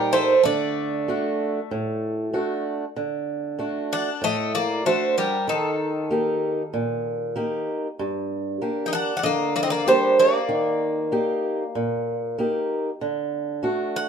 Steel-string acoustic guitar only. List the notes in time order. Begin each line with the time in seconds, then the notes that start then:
Already playing: A#2 D#4 G4
0.45 D3
1.08 A3 D4 F#4
1.71 A2
2.34 A3 D4 F#4
2.96 D3
3.59 A3 D4 F#4
4.22 A2
4.85 D4 F#4
5.47 D#3
6.11 A#3 D#4 G4
6.74 A#2
7.36 A#3 D#4 G4
7.99 G2
8.62 A#3 D4 G4
9.23 D3
9.86 A#3 D4 G4
10.49 D#3
11.12 A#3 D#4 G4
11.75 A#2
12.38 A#3 D#4 G4
13.01 D3
13.63 A3 D4 F#4